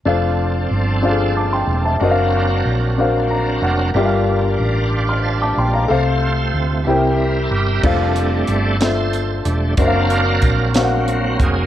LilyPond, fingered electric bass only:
\new Staff \with { instrumentName = "Fingered electric bass" } { \clef bass \time 6/8 \key f \major \tempo 4. = 62 f,,4 g,,4. e,,8 | fis,,4 ais,,4. eis,,8 | g,,4 a,,4. bes,,8 | c,4 d,8 c,4 g,,8 |
f,,4 g,,4. e,,8 | fis,,4 ais,,4. eis,,8 | }